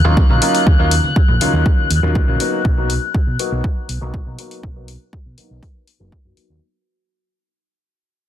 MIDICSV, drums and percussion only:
0, 0, Header, 1, 2, 480
1, 0, Start_track
1, 0, Tempo, 495868
1, 645, Time_signature, 4, 2, 24, 8
1, 8022, End_track
2, 0, Start_track
2, 0, Title_t, "Drums"
2, 45, Note_on_c, 9, 54, 76
2, 47, Note_on_c, 9, 64, 80
2, 142, Note_off_c, 9, 54, 0
2, 144, Note_off_c, 9, 64, 0
2, 162, Note_on_c, 9, 54, 67
2, 165, Note_on_c, 9, 36, 117
2, 259, Note_off_c, 9, 54, 0
2, 262, Note_off_c, 9, 36, 0
2, 283, Note_on_c, 9, 63, 93
2, 291, Note_on_c, 9, 54, 44
2, 380, Note_off_c, 9, 63, 0
2, 388, Note_off_c, 9, 54, 0
2, 405, Note_on_c, 9, 46, 106
2, 502, Note_off_c, 9, 46, 0
2, 529, Note_on_c, 9, 46, 59
2, 534, Note_on_c, 9, 54, 78
2, 625, Note_off_c, 9, 46, 0
2, 631, Note_off_c, 9, 54, 0
2, 645, Note_on_c, 9, 36, 119
2, 645, Note_on_c, 9, 54, 63
2, 647, Note_on_c, 9, 63, 95
2, 741, Note_off_c, 9, 54, 0
2, 742, Note_off_c, 9, 36, 0
2, 744, Note_off_c, 9, 63, 0
2, 769, Note_on_c, 9, 54, 41
2, 866, Note_off_c, 9, 54, 0
2, 885, Note_on_c, 9, 46, 107
2, 982, Note_off_c, 9, 46, 0
2, 1005, Note_on_c, 9, 54, 73
2, 1006, Note_on_c, 9, 63, 61
2, 1101, Note_off_c, 9, 54, 0
2, 1103, Note_off_c, 9, 63, 0
2, 1125, Note_on_c, 9, 36, 118
2, 1222, Note_off_c, 9, 36, 0
2, 1241, Note_on_c, 9, 64, 86
2, 1247, Note_on_c, 9, 54, 39
2, 1338, Note_off_c, 9, 64, 0
2, 1344, Note_off_c, 9, 54, 0
2, 1365, Note_on_c, 9, 46, 108
2, 1367, Note_on_c, 9, 63, 93
2, 1462, Note_off_c, 9, 46, 0
2, 1464, Note_off_c, 9, 63, 0
2, 1498, Note_on_c, 9, 54, 73
2, 1595, Note_off_c, 9, 54, 0
2, 1604, Note_on_c, 9, 36, 115
2, 1701, Note_off_c, 9, 36, 0
2, 1726, Note_on_c, 9, 54, 41
2, 1730, Note_on_c, 9, 63, 62
2, 1823, Note_off_c, 9, 54, 0
2, 1827, Note_off_c, 9, 63, 0
2, 1844, Note_on_c, 9, 46, 111
2, 1941, Note_off_c, 9, 46, 0
2, 1966, Note_on_c, 9, 64, 83
2, 1969, Note_on_c, 9, 54, 80
2, 2063, Note_off_c, 9, 64, 0
2, 2065, Note_off_c, 9, 54, 0
2, 2084, Note_on_c, 9, 36, 119
2, 2181, Note_off_c, 9, 36, 0
2, 2213, Note_on_c, 9, 54, 42
2, 2213, Note_on_c, 9, 63, 93
2, 2310, Note_off_c, 9, 54, 0
2, 2310, Note_off_c, 9, 63, 0
2, 2324, Note_on_c, 9, 46, 108
2, 2421, Note_off_c, 9, 46, 0
2, 2440, Note_on_c, 9, 54, 72
2, 2537, Note_off_c, 9, 54, 0
2, 2564, Note_on_c, 9, 36, 123
2, 2661, Note_off_c, 9, 36, 0
2, 2805, Note_on_c, 9, 46, 105
2, 2902, Note_off_c, 9, 46, 0
2, 3045, Note_on_c, 9, 36, 121
2, 3141, Note_off_c, 9, 36, 0
2, 3286, Note_on_c, 9, 46, 108
2, 3382, Note_off_c, 9, 46, 0
2, 3525, Note_on_c, 9, 36, 119
2, 3622, Note_off_c, 9, 36, 0
2, 3766, Note_on_c, 9, 46, 110
2, 3863, Note_off_c, 9, 46, 0
2, 4006, Note_on_c, 9, 36, 120
2, 4102, Note_off_c, 9, 36, 0
2, 4245, Note_on_c, 9, 46, 106
2, 4342, Note_off_c, 9, 46, 0
2, 4368, Note_on_c, 9, 46, 62
2, 4465, Note_off_c, 9, 46, 0
2, 4486, Note_on_c, 9, 36, 114
2, 4583, Note_off_c, 9, 36, 0
2, 4725, Note_on_c, 9, 46, 106
2, 4822, Note_off_c, 9, 46, 0
2, 4966, Note_on_c, 9, 36, 120
2, 5063, Note_off_c, 9, 36, 0
2, 5206, Note_on_c, 9, 46, 105
2, 5303, Note_off_c, 9, 46, 0
2, 5446, Note_on_c, 9, 36, 114
2, 5447, Note_on_c, 9, 46, 59
2, 5543, Note_off_c, 9, 36, 0
2, 5544, Note_off_c, 9, 46, 0
2, 5687, Note_on_c, 9, 46, 109
2, 5784, Note_off_c, 9, 46, 0
2, 5927, Note_on_c, 9, 36, 114
2, 6024, Note_off_c, 9, 36, 0
2, 6168, Note_on_c, 9, 46, 100
2, 6264, Note_off_c, 9, 46, 0
2, 8022, End_track
0, 0, End_of_file